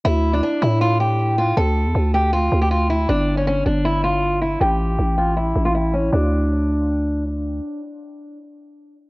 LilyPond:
<<
  \new Staff \with { instrumentName = "Steel-string acoustic guitar" } { \time 4/4 \key d \minor \tempo 4 = 158 e'8. d'16 d'8 e'8 f'8 g'4 f'8 | a'4. g'8 f'8. g'16 f'8 e'8 | d'8. cis'16 cis'8 d'8 e'8 f'4 e'8 | g'4. f'8 e'8. f'16 e'8 cis'8 |
d'2. r4 | r1 | }
  \new Staff \with { instrumentName = "808-style bass" } { \clef bass \time 4/4 \key d \minor d,4 r8 a,2~ a,8 | d,8. e,16 d,4. d,4. | g,,4. g,,2~ g,,8 | a,,4 a,,4. a,,4. |
d,1 | r1 | }
>>